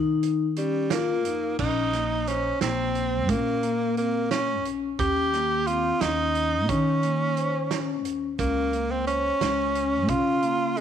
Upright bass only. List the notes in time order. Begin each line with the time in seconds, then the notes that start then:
Already playing: D#3
1.25 F2
1.59 A#1
2.61 A#1
3.29 A#2
4.65 A#1
4.99 D#2
6.01 D#2
6.69 D#3
8.05 D#2
8.39 C#2
9.41 C#2
10.09 C#3